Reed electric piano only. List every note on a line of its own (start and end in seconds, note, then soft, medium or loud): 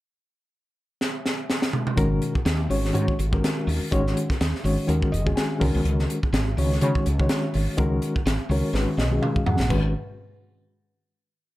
1.96 2.32 D#3 medium
1.96 2.32 G#3 medium
1.96 2.33 C#4 medium
1.96 2.33 F#4 medium
1.96 2.33 A#4 loud
2.34 2.40 F#4 soft
2.34 2.41 A#4 soft
2.69 2.92 D#3 medium
2.69 2.92 G#3 medium
2.69 2.92 C#4 medium
2.69 2.93 F#4 medium
2.69 2.93 C#5 medium
2.93 3.17 D#3 medium
2.93 3.17 G#3 medium
2.93 3.17 C#4 medium
2.93 3.17 F#4 medium
2.93 3.18 C#5 medium
3.18 3.25 F#4 soft
3.18 3.26 G#4 soft
3.32 3.88 D#3 medium
3.32 3.88 G#3 medium
3.32 3.89 C#4 medium
3.32 3.89 F#4 medium
3.32 3.89 A#4 medium
3.91 4.27 D#3 loud
3.91 4.27 G#3 medium
3.91 4.27 C#4 medium
3.91 4.27 F#4 medium
3.91 4.28 C#5 loud
4.29 4.35 F#4 soft
4.29 4.36 A#4 soft
4.63 4.86 D#3 medium
4.63 4.86 G#3 medium
4.63 4.87 C#4 medium
4.63 4.88 F#4 medium
4.63 4.88 C#5 medium
4.87 5.11 D#3 medium
4.87 5.11 G#3 medium
4.87 5.11 C#4 medium
4.87 5.10 F#4 medium
4.87 5.12 A#4 medium
5.11 5.19 F#4 soft
5.11 5.20 A#4 soft
5.11 5.35 D#5 medium
5.25 5.57 D#3 medium
5.25 5.58 G#3 medium
5.25 5.59 C#4 medium
5.25 5.59 F#4 medium
5.25 5.62 G#4 medium
5.36 5.81 G#5 medium
5.59 6.18 D#3 medium
5.59 6.18 G#3 medium
5.59 6.19 C#4 medium
5.59 6.19 F#4 medium
5.59 6.19 A#4 medium
6.22 6.28 F#4 soft
6.22 6.29 G#4 soft
6.57 6.80 D#3 medium
6.57 6.80 G#3 medium
6.57 6.81 C#4 medium
6.57 6.81 F#4 medium
6.57 6.81 C#5 medium
6.81 7.05 D#3 medium
6.81 7.05 G#3 medium
6.81 7.05 C#4 medium
6.81 7.05 F#4 medium
6.81 7.06 C#5 medium
7.06 7.13 F#4 soft
7.06 7.14 G#4 soft
7.19 7.75 D#3 medium
7.19 7.75 G#3 medium
7.19 7.76 C#4 medium
7.19 7.76 F#4 medium
7.19 7.76 C#5 medium
7.77 8.13 D#3 medium
7.77 8.13 G#3 medium
7.77 8.13 C#4 medium
7.77 8.14 F#4 medium
7.77 8.14 A#4 loud
8.15 8.21 F#4 soft
8.15 8.21 A#4 soft
8.49 8.72 D#3 medium
8.49 8.73 G#3 medium
8.49 8.73 C#4 medium
8.49 8.73 F#4 medium
8.49 8.74 A#4 medium
8.49 8.73 C#5 medium
8.74 8.97 D#3 medium
8.74 8.97 G#3 medium
8.74 8.97 C#4 medium
8.74 8.96 F#4 medium
8.74 8.98 B4 medium
8.97 9.05 F#4 soft
8.97 9.06 C#5 soft
8.97 9.21 D#5 medium
9.10 9.67 D#3 medium
9.10 9.67 G#3 medium
9.10 9.67 C#4 medium
9.10 9.67 F#4 medium
9.10 9.68 G#4 medium
9.22 9.45 F5 medium
9.46 9.69 F#5 medium
9.70 9.93 D#3 medium
9.70 9.93 G#3 medium
9.70 9.93 C#4 medium
9.70 9.93 F#4 medium
9.70 9.93 B4 medium